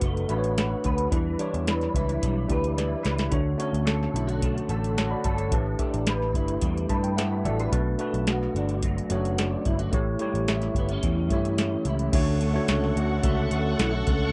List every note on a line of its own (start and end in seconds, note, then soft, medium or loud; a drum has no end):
0.00 0.24 F#1 medium
0.00 1.12 B2 medium
0.00 0.29 A3 medium
0.00 1.18 A3 medium
0.00 0.30 D4 medium
0.00 1.39 D4 medium
0.00 0.31 F#4 medium
0.00 0.56 F#4 medium
0.00 0.29 B4 medium
0.00 0.31 B4 medium
0.00 kick medium
0.00 closed hi-hat medium
0.17 closed hi-hat soft
0.29 0.74 A1 medium
0.29 1.02 A3 medium
0.29 1.02 D4 medium
0.29 1.03 F#4 medium
0.29 0.85 B4 medium
0.29 0.37 B4 medium
0.29 closed hi-hat medium
0.38 1.07 C#5 medium
0.44 closed hi-hat soft
0.57 1.18 F#4 medium
0.57 snare loud
0.57 closed hi-hat medium
0.84 1.07 D2 medium
0.84 1.67 B4 medium
0.84 kick medium
0.84 closed hi-hat medium
0.98 closed hi-hat soft
1.11 1.34 E2 medium
1.11 3.31 E3 medium
1.11 1.36 G3 medium
1.11 1.36 D4 medium
1.11 1.36 E4 medium
1.11 1.37 B4 medium
1.11 kick loud
1.11 closed hi-hat medium
1.39 2.36 G3 medium
1.39 2.36 D4 medium
1.39 3.59 D4 medium
1.39 2.37 E4 medium
1.39 2.37 C#5 medium
1.39 closed hi-hat medium
1.54 1.87 E2 medium
1.54 closed hi-hat soft
1.67 2.50 B4 medium
1.67 snare loud
1.67 closed hi-hat medium
1.81 snare soft
1.81 closed hi-hat soft
1.94 2.17 C#2 medium
1.94 2.77 E4 medium
1.94 kick medium
1.94 closed hi-hat medium
2.09 closed hi-hat soft
2.22 2.45 B1 medium
2.22 3.38 G3 medium
2.22 kick medium
2.22 closed hi-hat medium
2.48 2.94 D2 medium
2.48 3.22 G3 medium
2.48 3.22 D4 medium
2.48 3.22 E4 medium
2.48 3.23 G4 medium
2.48 3.02 B4 medium
2.48 kick medium
2.48 closed hi-hat medium
2.64 closed hi-hat soft
2.78 3.38 E4 medium
2.78 3.29 D5 medium
2.78 snare soft
2.78 closed hi-hat medium
3.03 3.27 C#2 medium
3.03 3.37 B4 medium
3.03 snare medium
3.03 closed hi-hat medium
3.18 snare medium
3.18 closed hi-hat soft
3.30 3.54 D2 medium
3.30 6.38 D3 medium
3.30 3.56 A3 medium
3.30 3.56 D4 medium
3.30 3.56 F#4 medium
3.30 3.57 C#5 medium
3.30 kick medium
3.30 closed hi-hat medium
3.58 4.56 A3 medium
3.58 5.58 C#4 medium
3.58 4.56 D4 medium
3.58 4.56 F#4 medium
3.58 4.57 C#5 medium
3.58 closed hi-hat medium
3.73 4.06 D2 medium
3.73 closed hi-hat soft
3.85 4.69 A4 medium
3.85 snare loud
3.85 closed hi-hat medium
4.03 snare soft
4.14 4.58 B1 medium
4.14 4.27 E4 soft
4.14 closed hi-hat medium
4.27 4.96 F#4 soft
4.27 closed hi-hat soft
4.42 6.11 A3 medium
4.42 kick medium
4.42 closed hi-hat medium
4.58 closed hi-hat soft
4.69 5.13 A1 medium
4.69 5.24 A4 medium
4.69 closed hi-hat medium
4.84 closed hi-hat soft
4.97 5.58 F#4 medium
4.97 5.11 C#5 medium
4.97 5.11 A5 medium
4.97 snare medium
4.97 closed hi-hat medium
5.11 5.37 D5 medium
5.11 5.37 B5 medium
5.24 5.52 G1 medium
5.24 6.08 A4 medium
5.24 kick medium
5.24 closed hi-hat medium
5.38 5.65 C#5 medium
5.38 5.65 A5 medium
5.38 closed hi-hat soft
5.51 5.74 A1 medium
5.51 7.72 A2 medium
5.51 5.76 A3 medium
5.51 5.77 D4 medium
5.51 5.77 G4 medium
5.51 5.77 B4 medium
5.51 kick loud
5.51 closed hi-hat medium
5.79 6.76 A3 medium
5.79 6.77 D4 medium
5.79 8.56 D4 medium
5.79 6.77 G4 medium
5.79 6.77 A4 medium
5.79 kick medium
5.79 closed hi-hat medium
5.94 6.34 A1 medium
5.94 closed hi-hat soft
6.07 6.89 B4 medium
6.07 snare loud
6.07 closed hi-hat medium
6.22 snare soft
6.34 6.56 G1 medium
6.34 7.16 E4 medium
6.34 kick medium
6.34 closed hi-hat medium
6.48 closed hi-hat soft
6.61 6.84 E2 medium
6.61 7.78 G3 medium
6.61 kick medium
6.61 closed hi-hat medium
6.78 closed hi-hat soft
6.89 7.46 G2 medium
6.89 7.44 B4 medium
6.89 7.03 A5 medium
6.89 kick medium
6.89 closed hi-hat medium
7.04 7.16 G5 medium
7.04 closed hi-hat soft
7.17 7.44 D4 medium
7.17 7.78 E4 medium
7.17 7.44 B4 medium
7.17 7.43 F#5 medium
7.17 snare medium
7.17 closed hi-hat medium
7.45 7.67 A1 medium
7.45 7.59 F#4 medium
7.45 7.60 A4 medium
7.45 7.58 D5 medium
7.45 7.71 E5 medium
7.45 closed hi-hat medium
7.60 7.71 D4 medium
7.60 7.79 B4 soft
7.60 7.72 B4 medium
7.60 closed hi-hat soft
7.72 7.95 B1 loud
7.72 9.93 B2 medium
7.72 7.96 A3 medium
7.72 7.97 D4 medium
7.72 7.97 F#4 medium
7.72 7.97 B4 medium
7.72 kick loud
7.72 closed hi-hat medium
7.98 8.96 A3 medium
7.98 10.22 A3 medium
7.98 8.97 D4 medium
7.98 8.97 F#4 medium
7.98 8.98 B4 medium
7.98 closed hi-hat medium
8.14 8.47 B1 medium
8.14 closed hi-hat soft
8.27 9.10 F#4 medium
8.27 snare loud
8.27 closed hi-hat medium
8.43 snare soft
8.55 8.99 G1 medium
8.55 9.37 D4 soft
8.55 closed hi-hat medium
8.69 closed hi-hat soft
8.83 9.99 F#3 medium
8.83 kick medium
8.83 closed hi-hat medium
8.98 closed hi-hat soft
9.09 9.55 F#1 medium
9.09 9.83 A3 medium
9.09 9.17 C#4 medium
9.09 9.66 F#4 medium
9.09 9.84 F#4 medium
9.09 9.84 C#5 medium
9.09 closed hi-hat medium
9.17 9.86 D4 medium
9.25 closed hi-hat soft
9.38 9.99 D4 medium
9.38 snare medium
9.38 closed hi-hat medium
9.65 9.88 G1 medium
9.65 9.79 E4 medium
9.65 kick medium
9.65 closed hi-hat medium
9.79 9.98 F#4 medium
9.79 closed hi-hat soft
9.92 10.15 A1 loud
9.92 12.14 A2 medium
9.92 10.17 A3 medium
9.92 10.17 E4 medium
9.92 10.18 G4 medium
9.92 10.18 C#5 medium
9.92 kick loud
9.92 closed hi-hat medium
10.19 12.20 G3 medium
10.19 11.17 A3 medium
10.19 11.18 E4 medium
10.19 11.18 G4 medium
10.19 11.18 C#5 medium
10.19 closed hi-hat medium
10.34 10.67 A1 medium
10.34 closed hi-hat soft
10.48 11.31 E4 medium
10.48 snare loud
10.48 closed hi-hat medium
10.62 snare soft
10.62 closed hi-hat soft
10.75 10.97 G1 medium
10.75 10.91 B3 medium
10.75 kick medium
10.75 closed hi-hat medium
10.89 11.58 C#4 soft
10.89 closed hi-hat soft
11.03 11.31 E2 medium
11.03 12.14 E3 medium
11.03 kick medium
11.03 closed hi-hat medium
11.30 11.75 G2 medium
11.30 12.04 A3 medium
11.30 12.04 E4 medium
11.30 11.85 E4 medium
11.30 12.04 G4 medium
11.30 12.05 C#5 medium
11.30 kick medium
11.30 closed hi-hat medium
11.45 closed hi-hat soft
11.58 12.68 C#4 medium
11.58 snare medium
11.58 closed hi-hat medium
11.85 12.08 C#2 medium
11.85 12.19 E4 medium
11.85 closed hi-hat medium
11.99 closed hi-hat soft
12.12 12.58 D2 loud
12.12 14.32 D3 medium
12.12 12.50 A3 medium
12.12 12.50 D4 medium
12.12 12.50 F#4 medium
12.12 14.32 A4 medium
12.12 12.51 C#5 medium
12.12 14.32 F#5 medium
12.12 14.32 C#6 medium
12.12 kick loud
12.12 closed hi-hat medium
12.12 crash medium
12.41 13.23 A3 medium
12.41 closed hi-hat medium
12.54 13.15 A3 medium
12.54 13.16 D4 medium
12.54 13.16 F#4 medium
12.54 13.16 C#5 medium
12.68 12.91 C#2 medium
12.68 13.51 C#4 medium
12.68 snare loud
12.68 closed hi-hat medium
12.84 snare soft
12.96 13.18 D2 medium
12.96 13.79 F#4 medium
12.96 closed hi-hat medium
13.23 13.46 C#2 medium
13.23 14.21 A3 medium
13.23 14.32 A3 medium
13.23 14.21 D4 medium
13.23 14.22 F#4 medium
13.23 14.22 E5 medium
13.23 kick medium
13.23 closed hi-hat medium
13.51 13.74 D2 loud
13.51 14.06 C#4 medium
13.51 closed hi-hat medium
13.79 14.01 B1 medium
13.79 13.92 E4 medium
13.79 snare loud
13.79 closed hi-hat medium
13.92 14.32 F#4 medium
14.07 14.29 C#2 medium
14.07 14.32 C#4 medium
14.07 kick medium
14.07 closed hi-hat medium